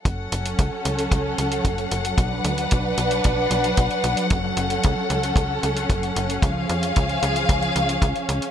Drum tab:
HH |x-xxx-xxx-xxxxxx|x-xxx-xxx-xxxxxx|x-xxx-xxx-xxxxxx|x-xxxxxxxxxxxxxx|
BD |o---o---o---o---|o---o---o---o---|o---o---o---o---|o---o---o---o---|